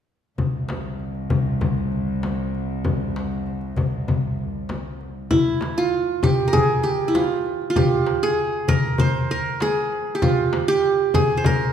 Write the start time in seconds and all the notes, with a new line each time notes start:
0.38 C2, darbuka dum, frame drum
0.54 darbuka ka
0.69 darbuka tek, frame drum
0.99 darbuka ka
1.15 darbuka ka
1.30 frame drum, darbuka dum
1.61 darbuka dum, frame drum
1.77 darbuka ka
1.92 darbuka ka
2.23 darbuka tek, frame drum
2.55 darbuka ka
2.85 frame drum, darbuka dum
3.01 darbuka ka
3.16 darbuka tek
3.46 darbuka ka
3.61 darbuka ka
3.76 darbuka dum, frame drum
4.08 darbuka dum, frame drum
4.23 darbuka ka
4.39 darbuka ka
4.69 darbuka tek, frame drum
5.01 darbuka ka
5.31 E4, frame drum, darbuka dum
5.47 darbuka ka
5.61 darbuka tek, frame drum
5.78 F4, darbuka ka
5.93 darbuka ka
6.09 darbuka ka
6.23 G4, frame drum, darbuka dum
6.48 A#4
6.53 G#4, frame drum, darbuka dum
6.83 G4
7.08 E4
7.15 F4, darbuka tek, frame drum
7.46 darbuka ka
7.61 darbuka ka
7.70 F4
7.76 G4, frame drum, darbuka dum
7.92 darbuka ka
8.07 darbuka tek
8.22 G#4, darbuka ka
8.38 darbuka ka
8.53 darbuka ka
8.68 A#4, darbuka dum, frame drum
8.98 C5, darbuka dum, frame drum
9.31 A#4
9.60 G#4, darbuka tek, frame drum
9.92 darbuka ka
10.07 darbuka ka
10.15 G4
10.22 F4, frame drum, darbuka dum
10.53 darbuka tek, frame drum
10.68 G4, darbuka ka
10.84 darbuka ka
10.99 darbuka ka
11.14 G#4, darbuka dum, frame drum
11.37 C5
11.44 A#4, darbuka dum, frame drum